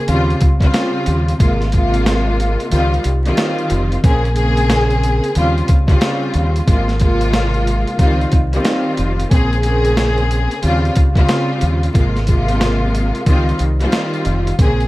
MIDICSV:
0, 0, Header, 1, 4, 480
1, 0, Start_track
1, 0, Tempo, 659341
1, 1019, Time_signature, 4, 2, 24, 8
1, 10830, End_track
2, 0, Start_track
2, 0, Title_t, "String section"
2, 0, Program_c, 0, 48
2, 56, Note_on_c, 0, 49, 97
2, 61, Note_on_c, 0, 55, 93
2, 67, Note_on_c, 0, 60, 88
2, 72, Note_on_c, 0, 65, 117
2, 283, Note_off_c, 0, 49, 0
2, 286, Note_off_c, 0, 55, 0
2, 289, Note_off_c, 0, 60, 0
2, 291, Note_off_c, 0, 65, 0
2, 440, Note_on_c, 0, 49, 101
2, 445, Note_on_c, 0, 55, 91
2, 450, Note_on_c, 0, 60, 92
2, 455, Note_on_c, 0, 65, 112
2, 979, Note_off_c, 0, 49, 0
2, 981, Note_off_c, 0, 55, 0
2, 984, Note_off_c, 0, 60, 0
2, 986, Note_off_c, 0, 65, 0
2, 1005, Note_on_c, 0, 48, 93
2, 1010, Note_on_c, 0, 56, 88
2, 1016, Note_on_c, 0, 58, 83
2, 1021, Note_on_c, 0, 65, 97
2, 1238, Note_off_c, 0, 48, 0
2, 1240, Note_off_c, 0, 56, 0
2, 1243, Note_off_c, 0, 58, 0
2, 1245, Note_off_c, 0, 65, 0
2, 1259, Note_on_c, 0, 48, 109
2, 1264, Note_on_c, 0, 56, 84
2, 1269, Note_on_c, 0, 58, 97
2, 1274, Note_on_c, 0, 65, 110
2, 1965, Note_on_c, 0, 51, 96
2, 1970, Note_on_c, 0, 55, 94
2, 1971, Note_off_c, 0, 65, 0
2, 1975, Note_on_c, 0, 60, 87
2, 1979, Note_off_c, 0, 48, 0
2, 1980, Note_on_c, 0, 65, 111
2, 1982, Note_off_c, 0, 56, 0
2, 1984, Note_off_c, 0, 58, 0
2, 2198, Note_off_c, 0, 51, 0
2, 2200, Note_off_c, 0, 55, 0
2, 2203, Note_off_c, 0, 60, 0
2, 2205, Note_off_c, 0, 65, 0
2, 2371, Note_on_c, 0, 51, 94
2, 2376, Note_on_c, 0, 55, 87
2, 2382, Note_on_c, 0, 60, 93
2, 2387, Note_on_c, 0, 65, 104
2, 2904, Note_off_c, 0, 51, 0
2, 2907, Note_off_c, 0, 55, 0
2, 2910, Note_off_c, 0, 60, 0
2, 2912, Note_off_c, 0, 65, 0
2, 2933, Note_on_c, 0, 49, 97
2, 2939, Note_on_c, 0, 58, 87
2, 2944, Note_on_c, 0, 60, 89
2, 2949, Note_on_c, 0, 68, 106
2, 3151, Note_off_c, 0, 49, 0
2, 3157, Note_off_c, 0, 58, 0
2, 3160, Note_on_c, 0, 49, 97
2, 3162, Note_off_c, 0, 60, 0
2, 3165, Note_on_c, 0, 58, 92
2, 3167, Note_off_c, 0, 68, 0
2, 3171, Note_on_c, 0, 60, 92
2, 3176, Note_on_c, 0, 68, 121
2, 3887, Note_off_c, 0, 49, 0
2, 3892, Note_off_c, 0, 58, 0
2, 3895, Note_off_c, 0, 60, 0
2, 3896, Note_on_c, 0, 49, 100
2, 3898, Note_off_c, 0, 68, 0
2, 3901, Note_on_c, 0, 55, 92
2, 3907, Note_on_c, 0, 60, 87
2, 3912, Note_on_c, 0, 65, 116
2, 4123, Note_off_c, 0, 49, 0
2, 4126, Note_off_c, 0, 55, 0
2, 4129, Note_off_c, 0, 60, 0
2, 4131, Note_off_c, 0, 65, 0
2, 4280, Note_on_c, 0, 49, 103
2, 4286, Note_on_c, 0, 55, 90
2, 4290, Note_on_c, 0, 60, 91
2, 4296, Note_on_c, 0, 65, 105
2, 4819, Note_off_c, 0, 49, 0
2, 4821, Note_off_c, 0, 55, 0
2, 4824, Note_off_c, 0, 60, 0
2, 4827, Note_off_c, 0, 65, 0
2, 4845, Note_on_c, 0, 48, 91
2, 4850, Note_on_c, 0, 56, 87
2, 4856, Note_on_c, 0, 58, 88
2, 4861, Note_on_c, 0, 65, 100
2, 5078, Note_off_c, 0, 48, 0
2, 5080, Note_off_c, 0, 56, 0
2, 5083, Note_off_c, 0, 58, 0
2, 5086, Note_off_c, 0, 65, 0
2, 5099, Note_on_c, 0, 48, 102
2, 5104, Note_on_c, 0, 56, 83
2, 5109, Note_on_c, 0, 58, 95
2, 5114, Note_on_c, 0, 65, 111
2, 5804, Note_on_c, 0, 51, 95
2, 5810, Note_on_c, 0, 55, 93
2, 5811, Note_off_c, 0, 65, 0
2, 5815, Note_on_c, 0, 60, 94
2, 5819, Note_off_c, 0, 48, 0
2, 5820, Note_on_c, 0, 65, 114
2, 5822, Note_off_c, 0, 56, 0
2, 5824, Note_off_c, 0, 58, 0
2, 6037, Note_off_c, 0, 51, 0
2, 6040, Note_off_c, 0, 55, 0
2, 6043, Note_off_c, 0, 60, 0
2, 6045, Note_off_c, 0, 65, 0
2, 6211, Note_on_c, 0, 51, 97
2, 6216, Note_on_c, 0, 55, 88
2, 6221, Note_on_c, 0, 60, 94
2, 6226, Note_on_c, 0, 65, 103
2, 6744, Note_off_c, 0, 51, 0
2, 6747, Note_off_c, 0, 55, 0
2, 6749, Note_off_c, 0, 60, 0
2, 6752, Note_off_c, 0, 65, 0
2, 6774, Note_on_c, 0, 49, 93
2, 6779, Note_on_c, 0, 58, 83
2, 6784, Note_on_c, 0, 60, 84
2, 6789, Note_on_c, 0, 68, 105
2, 6991, Note_off_c, 0, 49, 0
2, 6996, Note_off_c, 0, 58, 0
2, 7000, Note_on_c, 0, 49, 98
2, 7002, Note_off_c, 0, 60, 0
2, 7005, Note_on_c, 0, 58, 90
2, 7007, Note_off_c, 0, 68, 0
2, 7010, Note_on_c, 0, 60, 92
2, 7016, Note_on_c, 0, 68, 116
2, 7727, Note_off_c, 0, 49, 0
2, 7732, Note_off_c, 0, 58, 0
2, 7735, Note_off_c, 0, 60, 0
2, 7735, Note_on_c, 0, 49, 101
2, 7737, Note_off_c, 0, 68, 0
2, 7740, Note_on_c, 0, 55, 94
2, 7746, Note_on_c, 0, 60, 88
2, 7751, Note_on_c, 0, 65, 122
2, 7963, Note_off_c, 0, 49, 0
2, 7965, Note_off_c, 0, 55, 0
2, 7968, Note_off_c, 0, 60, 0
2, 7971, Note_off_c, 0, 65, 0
2, 8119, Note_on_c, 0, 49, 104
2, 8125, Note_on_c, 0, 55, 90
2, 8130, Note_on_c, 0, 60, 89
2, 8135, Note_on_c, 0, 65, 110
2, 8658, Note_off_c, 0, 49, 0
2, 8661, Note_off_c, 0, 55, 0
2, 8664, Note_off_c, 0, 60, 0
2, 8666, Note_off_c, 0, 65, 0
2, 8685, Note_on_c, 0, 48, 92
2, 8690, Note_on_c, 0, 56, 89
2, 8695, Note_on_c, 0, 58, 85
2, 8700, Note_on_c, 0, 65, 98
2, 8917, Note_off_c, 0, 48, 0
2, 8920, Note_off_c, 0, 56, 0
2, 8923, Note_off_c, 0, 58, 0
2, 8925, Note_off_c, 0, 65, 0
2, 8939, Note_on_c, 0, 48, 109
2, 8944, Note_on_c, 0, 56, 86
2, 8950, Note_on_c, 0, 58, 93
2, 8955, Note_on_c, 0, 65, 108
2, 9645, Note_on_c, 0, 51, 98
2, 9650, Note_on_c, 0, 55, 90
2, 9652, Note_off_c, 0, 65, 0
2, 9656, Note_on_c, 0, 60, 92
2, 9659, Note_off_c, 0, 48, 0
2, 9661, Note_on_c, 0, 65, 111
2, 9662, Note_off_c, 0, 56, 0
2, 9664, Note_off_c, 0, 58, 0
2, 9878, Note_off_c, 0, 51, 0
2, 9880, Note_off_c, 0, 55, 0
2, 9883, Note_off_c, 0, 60, 0
2, 9886, Note_off_c, 0, 65, 0
2, 10051, Note_on_c, 0, 51, 94
2, 10056, Note_on_c, 0, 55, 86
2, 10061, Note_on_c, 0, 60, 97
2, 10066, Note_on_c, 0, 65, 103
2, 10584, Note_off_c, 0, 51, 0
2, 10587, Note_off_c, 0, 55, 0
2, 10589, Note_off_c, 0, 60, 0
2, 10592, Note_off_c, 0, 65, 0
2, 10613, Note_on_c, 0, 49, 96
2, 10618, Note_on_c, 0, 58, 84
2, 10623, Note_on_c, 0, 60, 87
2, 10629, Note_on_c, 0, 68, 107
2, 10830, Note_off_c, 0, 49, 0
2, 10830, Note_off_c, 0, 58, 0
2, 10830, Note_off_c, 0, 60, 0
2, 10830, Note_off_c, 0, 68, 0
2, 10830, End_track
3, 0, Start_track
3, 0, Title_t, "Fingered electric bass"
3, 0, Program_c, 1, 33
3, 62, Note_on_c, 1, 39, 115
3, 243, Note_off_c, 1, 39, 0
3, 304, Note_on_c, 1, 37, 91
3, 484, Note_off_c, 1, 37, 0
3, 782, Note_on_c, 1, 39, 97
3, 963, Note_off_c, 1, 39, 0
3, 1021, Note_on_c, 1, 32, 112
3, 1861, Note_off_c, 1, 32, 0
3, 1982, Note_on_c, 1, 37, 106
3, 2163, Note_off_c, 1, 37, 0
3, 2222, Note_on_c, 1, 36, 90
3, 2403, Note_off_c, 1, 36, 0
3, 2703, Note_on_c, 1, 29, 98
3, 2883, Note_off_c, 1, 29, 0
3, 2941, Note_on_c, 1, 34, 115
3, 3781, Note_off_c, 1, 34, 0
3, 3904, Note_on_c, 1, 39, 107
3, 4084, Note_off_c, 1, 39, 0
3, 4145, Note_on_c, 1, 37, 85
3, 4324, Note_off_c, 1, 37, 0
3, 4623, Note_on_c, 1, 39, 96
3, 4804, Note_off_c, 1, 39, 0
3, 4862, Note_on_c, 1, 32, 113
3, 5701, Note_off_c, 1, 32, 0
3, 5819, Note_on_c, 1, 37, 108
3, 6001, Note_off_c, 1, 37, 0
3, 6064, Note_on_c, 1, 36, 89
3, 6244, Note_off_c, 1, 36, 0
3, 6543, Note_on_c, 1, 29, 97
3, 6724, Note_off_c, 1, 29, 0
3, 6781, Note_on_c, 1, 34, 112
3, 7621, Note_off_c, 1, 34, 0
3, 7744, Note_on_c, 1, 39, 113
3, 7924, Note_off_c, 1, 39, 0
3, 7984, Note_on_c, 1, 37, 90
3, 8164, Note_off_c, 1, 37, 0
3, 8463, Note_on_c, 1, 39, 96
3, 8643, Note_off_c, 1, 39, 0
3, 8701, Note_on_c, 1, 32, 116
3, 9541, Note_off_c, 1, 32, 0
3, 9659, Note_on_c, 1, 37, 111
3, 9841, Note_off_c, 1, 37, 0
3, 9902, Note_on_c, 1, 36, 93
3, 10083, Note_off_c, 1, 36, 0
3, 10382, Note_on_c, 1, 29, 97
3, 10563, Note_off_c, 1, 29, 0
3, 10622, Note_on_c, 1, 34, 111
3, 10830, Note_off_c, 1, 34, 0
3, 10830, End_track
4, 0, Start_track
4, 0, Title_t, "Drums"
4, 57, Note_on_c, 9, 42, 92
4, 130, Note_off_c, 9, 42, 0
4, 221, Note_on_c, 9, 42, 37
4, 294, Note_off_c, 9, 42, 0
4, 295, Note_on_c, 9, 42, 81
4, 302, Note_on_c, 9, 36, 103
4, 368, Note_off_c, 9, 42, 0
4, 375, Note_off_c, 9, 36, 0
4, 440, Note_on_c, 9, 36, 104
4, 451, Note_on_c, 9, 42, 48
4, 513, Note_off_c, 9, 36, 0
4, 524, Note_off_c, 9, 42, 0
4, 536, Note_on_c, 9, 42, 96
4, 540, Note_on_c, 9, 38, 109
4, 609, Note_off_c, 9, 42, 0
4, 613, Note_off_c, 9, 38, 0
4, 773, Note_on_c, 9, 42, 80
4, 846, Note_off_c, 9, 42, 0
4, 935, Note_on_c, 9, 42, 53
4, 1008, Note_off_c, 9, 42, 0
4, 1020, Note_on_c, 9, 36, 123
4, 1021, Note_on_c, 9, 42, 88
4, 1092, Note_off_c, 9, 36, 0
4, 1093, Note_off_c, 9, 42, 0
4, 1171, Note_on_c, 9, 38, 35
4, 1177, Note_on_c, 9, 42, 37
4, 1244, Note_off_c, 9, 38, 0
4, 1250, Note_off_c, 9, 42, 0
4, 1254, Note_on_c, 9, 42, 77
4, 1265, Note_on_c, 9, 36, 87
4, 1327, Note_off_c, 9, 42, 0
4, 1338, Note_off_c, 9, 36, 0
4, 1410, Note_on_c, 9, 42, 56
4, 1483, Note_off_c, 9, 42, 0
4, 1501, Note_on_c, 9, 38, 121
4, 1505, Note_on_c, 9, 42, 94
4, 1574, Note_off_c, 9, 38, 0
4, 1578, Note_off_c, 9, 42, 0
4, 1746, Note_on_c, 9, 42, 75
4, 1819, Note_off_c, 9, 42, 0
4, 1893, Note_on_c, 9, 42, 47
4, 1966, Note_off_c, 9, 42, 0
4, 1977, Note_on_c, 9, 42, 89
4, 2050, Note_off_c, 9, 42, 0
4, 2140, Note_on_c, 9, 42, 36
4, 2213, Note_off_c, 9, 42, 0
4, 2215, Note_on_c, 9, 42, 82
4, 2287, Note_off_c, 9, 42, 0
4, 2370, Note_on_c, 9, 42, 49
4, 2443, Note_off_c, 9, 42, 0
4, 2455, Note_on_c, 9, 42, 96
4, 2459, Note_on_c, 9, 38, 109
4, 2528, Note_off_c, 9, 42, 0
4, 2532, Note_off_c, 9, 38, 0
4, 2610, Note_on_c, 9, 42, 37
4, 2683, Note_off_c, 9, 42, 0
4, 2692, Note_on_c, 9, 42, 78
4, 2765, Note_off_c, 9, 42, 0
4, 2853, Note_on_c, 9, 42, 52
4, 2926, Note_off_c, 9, 42, 0
4, 2939, Note_on_c, 9, 36, 122
4, 2939, Note_on_c, 9, 42, 88
4, 3012, Note_off_c, 9, 36, 0
4, 3012, Note_off_c, 9, 42, 0
4, 3095, Note_on_c, 9, 42, 38
4, 3168, Note_off_c, 9, 42, 0
4, 3172, Note_on_c, 9, 42, 76
4, 3245, Note_off_c, 9, 42, 0
4, 3328, Note_on_c, 9, 42, 56
4, 3401, Note_off_c, 9, 42, 0
4, 3419, Note_on_c, 9, 38, 120
4, 3423, Note_on_c, 9, 42, 94
4, 3492, Note_off_c, 9, 38, 0
4, 3496, Note_off_c, 9, 42, 0
4, 3571, Note_on_c, 9, 42, 37
4, 3644, Note_off_c, 9, 42, 0
4, 3665, Note_on_c, 9, 42, 73
4, 3738, Note_off_c, 9, 42, 0
4, 3812, Note_on_c, 9, 42, 47
4, 3885, Note_off_c, 9, 42, 0
4, 3896, Note_on_c, 9, 42, 91
4, 3969, Note_off_c, 9, 42, 0
4, 4060, Note_on_c, 9, 42, 36
4, 4133, Note_off_c, 9, 42, 0
4, 4135, Note_on_c, 9, 42, 80
4, 4142, Note_on_c, 9, 36, 99
4, 4208, Note_off_c, 9, 42, 0
4, 4215, Note_off_c, 9, 36, 0
4, 4280, Note_on_c, 9, 36, 103
4, 4289, Note_on_c, 9, 42, 46
4, 4353, Note_off_c, 9, 36, 0
4, 4362, Note_off_c, 9, 42, 0
4, 4376, Note_on_c, 9, 42, 91
4, 4380, Note_on_c, 9, 38, 116
4, 4448, Note_off_c, 9, 42, 0
4, 4453, Note_off_c, 9, 38, 0
4, 4613, Note_on_c, 9, 42, 78
4, 4686, Note_off_c, 9, 42, 0
4, 4775, Note_on_c, 9, 42, 54
4, 4847, Note_off_c, 9, 42, 0
4, 4860, Note_on_c, 9, 36, 117
4, 4860, Note_on_c, 9, 42, 87
4, 4933, Note_off_c, 9, 36, 0
4, 4933, Note_off_c, 9, 42, 0
4, 5011, Note_on_c, 9, 38, 35
4, 5017, Note_on_c, 9, 42, 37
4, 5084, Note_off_c, 9, 38, 0
4, 5090, Note_off_c, 9, 42, 0
4, 5093, Note_on_c, 9, 42, 77
4, 5105, Note_on_c, 9, 36, 88
4, 5166, Note_off_c, 9, 42, 0
4, 5178, Note_off_c, 9, 36, 0
4, 5249, Note_on_c, 9, 42, 58
4, 5322, Note_off_c, 9, 42, 0
4, 5339, Note_on_c, 9, 38, 119
4, 5343, Note_on_c, 9, 42, 95
4, 5412, Note_off_c, 9, 38, 0
4, 5416, Note_off_c, 9, 42, 0
4, 5490, Note_on_c, 9, 42, 36
4, 5563, Note_off_c, 9, 42, 0
4, 5585, Note_on_c, 9, 42, 74
4, 5658, Note_off_c, 9, 42, 0
4, 5733, Note_on_c, 9, 42, 47
4, 5805, Note_off_c, 9, 42, 0
4, 5816, Note_on_c, 9, 42, 91
4, 5817, Note_on_c, 9, 36, 100
4, 5889, Note_off_c, 9, 42, 0
4, 5890, Note_off_c, 9, 36, 0
4, 5980, Note_on_c, 9, 42, 36
4, 6052, Note_off_c, 9, 42, 0
4, 6055, Note_on_c, 9, 42, 81
4, 6062, Note_on_c, 9, 36, 104
4, 6127, Note_off_c, 9, 42, 0
4, 6135, Note_off_c, 9, 36, 0
4, 6210, Note_on_c, 9, 42, 47
4, 6283, Note_off_c, 9, 42, 0
4, 6295, Note_on_c, 9, 42, 97
4, 6299, Note_on_c, 9, 38, 110
4, 6367, Note_off_c, 9, 42, 0
4, 6371, Note_off_c, 9, 38, 0
4, 6533, Note_on_c, 9, 42, 76
4, 6606, Note_off_c, 9, 42, 0
4, 6694, Note_on_c, 9, 42, 53
4, 6767, Note_off_c, 9, 42, 0
4, 6779, Note_on_c, 9, 36, 123
4, 6780, Note_on_c, 9, 42, 90
4, 6852, Note_off_c, 9, 36, 0
4, 6853, Note_off_c, 9, 42, 0
4, 6936, Note_on_c, 9, 42, 37
4, 7009, Note_off_c, 9, 42, 0
4, 7013, Note_on_c, 9, 42, 80
4, 7086, Note_off_c, 9, 42, 0
4, 7169, Note_on_c, 9, 42, 54
4, 7241, Note_off_c, 9, 42, 0
4, 7259, Note_on_c, 9, 38, 125
4, 7263, Note_on_c, 9, 42, 94
4, 7332, Note_off_c, 9, 38, 0
4, 7336, Note_off_c, 9, 42, 0
4, 7409, Note_on_c, 9, 42, 37
4, 7482, Note_off_c, 9, 42, 0
4, 7505, Note_on_c, 9, 42, 70
4, 7578, Note_off_c, 9, 42, 0
4, 7653, Note_on_c, 9, 42, 47
4, 7726, Note_off_c, 9, 42, 0
4, 7736, Note_on_c, 9, 42, 88
4, 7809, Note_off_c, 9, 42, 0
4, 7900, Note_on_c, 9, 42, 36
4, 7973, Note_off_c, 9, 42, 0
4, 7975, Note_on_c, 9, 42, 81
4, 7982, Note_on_c, 9, 36, 100
4, 8048, Note_off_c, 9, 42, 0
4, 8055, Note_off_c, 9, 36, 0
4, 8120, Note_on_c, 9, 36, 103
4, 8130, Note_on_c, 9, 42, 48
4, 8193, Note_off_c, 9, 36, 0
4, 8203, Note_off_c, 9, 42, 0
4, 8216, Note_on_c, 9, 42, 96
4, 8220, Note_on_c, 9, 38, 115
4, 8288, Note_off_c, 9, 42, 0
4, 8292, Note_off_c, 9, 38, 0
4, 8453, Note_on_c, 9, 42, 79
4, 8526, Note_off_c, 9, 42, 0
4, 8615, Note_on_c, 9, 42, 54
4, 8687, Note_off_c, 9, 42, 0
4, 8699, Note_on_c, 9, 36, 125
4, 8700, Note_on_c, 9, 42, 90
4, 8772, Note_off_c, 9, 36, 0
4, 8773, Note_off_c, 9, 42, 0
4, 8851, Note_on_c, 9, 38, 36
4, 8857, Note_on_c, 9, 42, 37
4, 8923, Note_off_c, 9, 38, 0
4, 8929, Note_off_c, 9, 42, 0
4, 8932, Note_on_c, 9, 42, 76
4, 8944, Note_on_c, 9, 36, 90
4, 9005, Note_off_c, 9, 42, 0
4, 9017, Note_off_c, 9, 36, 0
4, 9088, Note_on_c, 9, 42, 55
4, 9161, Note_off_c, 9, 42, 0
4, 9179, Note_on_c, 9, 38, 126
4, 9183, Note_on_c, 9, 42, 94
4, 9252, Note_off_c, 9, 38, 0
4, 9256, Note_off_c, 9, 42, 0
4, 9425, Note_on_c, 9, 42, 72
4, 9497, Note_off_c, 9, 42, 0
4, 9572, Note_on_c, 9, 42, 48
4, 9645, Note_off_c, 9, 42, 0
4, 9656, Note_on_c, 9, 42, 88
4, 9657, Note_on_c, 9, 36, 101
4, 9728, Note_off_c, 9, 42, 0
4, 9729, Note_off_c, 9, 36, 0
4, 9820, Note_on_c, 9, 42, 36
4, 9893, Note_off_c, 9, 42, 0
4, 9895, Note_on_c, 9, 42, 81
4, 9968, Note_off_c, 9, 42, 0
4, 10050, Note_on_c, 9, 42, 47
4, 10123, Note_off_c, 9, 42, 0
4, 10136, Note_on_c, 9, 42, 94
4, 10140, Note_on_c, 9, 38, 109
4, 10209, Note_off_c, 9, 42, 0
4, 10213, Note_off_c, 9, 38, 0
4, 10291, Note_on_c, 9, 42, 36
4, 10364, Note_off_c, 9, 42, 0
4, 10374, Note_on_c, 9, 42, 78
4, 10447, Note_off_c, 9, 42, 0
4, 10535, Note_on_c, 9, 42, 54
4, 10608, Note_off_c, 9, 42, 0
4, 10620, Note_on_c, 9, 36, 125
4, 10621, Note_on_c, 9, 42, 91
4, 10692, Note_off_c, 9, 36, 0
4, 10694, Note_off_c, 9, 42, 0
4, 10777, Note_on_c, 9, 42, 37
4, 10830, Note_off_c, 9, 42, 0
4, 10830, End_track
0, 0, End_of_file